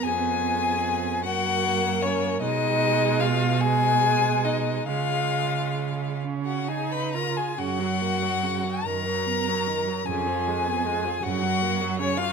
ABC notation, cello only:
X:1
M:6/8
L:1/16
Q:3/8=49
K:F#
V:1 name="Cello" clef=bass
=F,,6 ^F,,6 | B,,12 | C,8- C,3 z | F,,6 F,,6 |
E,,6 F,,6 |]